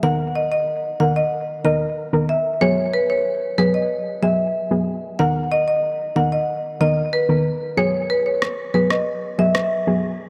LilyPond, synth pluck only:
\new Staff \with { instrumentName = "Synth pluck" } { \time 4/4 \key b \major \tempo 4 = 93 <dis b ais'>4 r8 <dis b ais'>16 r8. <dis b ais'>16 r8 <dis b ais'>16 r8 | <fis b gis'>4 r8 <fis b gis'>16 r8. <fis b gis'>16 r8 <fis b gis'>16 r8 | <dis b ais'>4 r8 <dis b ais'>16 r8. <dis b ais'>16 r8 <dis b ais'>16 r8 | <fis b gis'>4 r8 <fis b gis'>16 r8. <fis b gis'>16 r8 <fis b gis'>16 r8 | }